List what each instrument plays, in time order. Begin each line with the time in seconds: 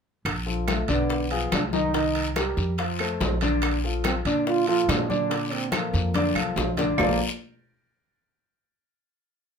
0.25 upright bass A#1, high bongo, high conga, high timbale, long guiro, claves
0.46 grand piano F3 F4 A4, high conga
0.68 trombone A3, high bongo, high conga, high timbale, low timbale, short guiro, claves
0.88 upright bass B1, grand piano D3 D4 D5, trombone B3, high conga, high timbale, short guiro
1.10 high bongo, high conga, long guiro
1.31 grand piano F3 F4 G#4, high conga, high timbale
1.52 upright bass C2, trombone D4, high bongo, low bongo, high conga, high timbale, low timbale, short guiro, claves
1.73 grand piano D#3 D#4 D#5, trombone D#4, high conga, short guiro
1.94 grand piano D#3 D#4 D#5, high bongo, high conga, high timbale, long guiro
2.15 high bongo, high conga, high timbale
2.36 grand piano G3 G4 A#4, high bongo, high conga, high timbale, low timbale, short guiro, claves
2.57 upright bass F2, high bongo, high conga, short guiro
2.78 grand piano F3 F4 F5, high bongo, high conga, high timbale, long guiro
2.99 grand piano A3 A4 C5, high bongo, high conga, high timbale, claves
3.21 upright bass A#1, high bongo, low bongo, high conga, low timbale, short guiro
3.41 grand piano D3 D4 D5, high conga, high timbale, short guiro
3.62 high bongo, high conga, high timbale, long guiro, claves
3.84 grand piano F3 F4 A4, high conga
4.04 trombone C4, high bongo, high conga, high timbale, low timbale, short guiro, claves
4.25 upright bass A#2, grand piano D3 D4 D5, trombone D4, high timbale, short guiro
4.47 trombone F4, high bongo, high conga, long guiro
4.67 grand piano F3 F4 A4, trombone F4, high conga, high timbale
4.89 upright bass A#2, trombone D4, high bongo, low bongo, high conga, high timbale, low timbale, short guiro, claves
5.09 grand piano D3 D4 D5, trombone D4, high conga, short guiro
5.29 grand piano D3 D4 D5, high bongo, high conga, high timbale, long guiro
5.51 trombone C4, high bongo, high conga, high timbale
5.72 grand piano F3 F4 A4, trombone A#3, high bongo, high conga, high timbale, low timbale, short guiro, claves
5.93 upright bass F2, high bongo, high conga, short guiro
6.14 grand piano D3 D4 D5, high bongo, high conga, high timbale, long guiro
6.35 upright bass C2, grand piano F3 F4 A4, high bongo, high conga, high timbale, claves
6.56 upright bass A#1, high bongo, low bongo, low timbale, short guiro
6.77 grand piano D3 D4 D5, high bongo, low conga, high timbale, short guiro
6.98 upright bass A#1, grand piano A#3 F4 A4 A#4 C5 D5, low bongo, low conga, low timbale, long guiro, claves